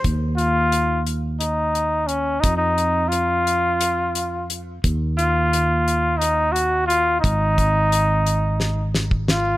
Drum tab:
HH |x-x-x-x-x-x-x-|x-x-x-x-x-x-x-|x-x-x-x-x-x-x-|x-x-x-x-------|
SD |--------------|--------------|--------------|--------o-o-o-|
BD |o-------------|o-------------|o-------------|o-o--------o--|